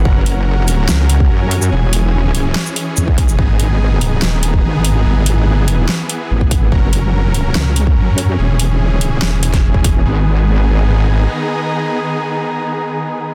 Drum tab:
HH |--x---x---x---x-|--x---x---x---x-|--x---x---x---x-|--x---x---x---x-|
SH |------x-x------x|---------x--x--x|----------------|----------------|
SD |--------o-------|--------o-------|--------o-------|--------o-------|
BD |o----------o----|-------------oo-|o----------o----|-------------oo-|

HH |--x---x---x---x-|--x---x---xx--x-|----------------|----------------|
SH |----------------|----------------|----------------|----------------|
SD |--------o-------|--------o--o----|----------------|----------------|
BD |o----------o----|-----------o-oo-|----------------|----------------|